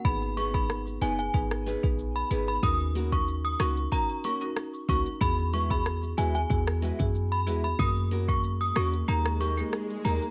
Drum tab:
HH |--x---x---x---x-|--x---x---x---x-|--x---x---x---x-|--x---x---x---x-|
SH |xxxxxxxxxxxxxxxx|xxxxxxxxxxxxxxxx|xxxxxxxxxxxxxxxx|xxxxxxxxxxxxxxxx|
SD |----r----r------|------r-----r---|----r----r------|------r--r--r---|
BD |o--o----o--o----|o--o----o-----o-|o--o----o--o----|o--o------------|